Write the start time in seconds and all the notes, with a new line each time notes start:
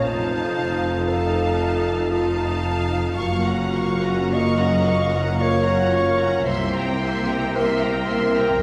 Already playing: A#2 F3 C#4 F4 A#4
0.03 F1 F2 A3 D#4 F4 C5 F5 A5
0.57 C3
1.07 D#4 A4 F5 A5
1.60 F4
2.11 D#4 F4 A4 F5 A5
2.63 F4
3.16 F#1 F#2 A#3 F4 F#4 F5 C#6
3.44 C#4 F#5 A#5
3.74 C#3 A#3 F5 C#6
4.03 C#4 F#5 A#5
4.32 A#3 C#4 D#5 F5 C#6
4.58 C#4 F#5 A#5
4.85 A#3 F4 F5 C#6
5.11 C#4 F#5 A#5
5.37 A#3 F4 A#4 F5 C#6
5.42 C#5
5.64 C#4 F#5 A#5
5.91 A#3 F4 F5 C#6
6.17 C#4 F#5 A#5
6.44 C2 C3 A#3 E4 C5 E5 C6
6.73 C4 G5 A#5
6.99 G3 A#3 C6
7.03 E5
7.27 C4 G5 A#5
7.55 A#3 C4 E4 A#4 E5 C6
7.82 C4 G5 A#5
8.07 A#3 E4 E5 C6
8.35 C4 G5 A#5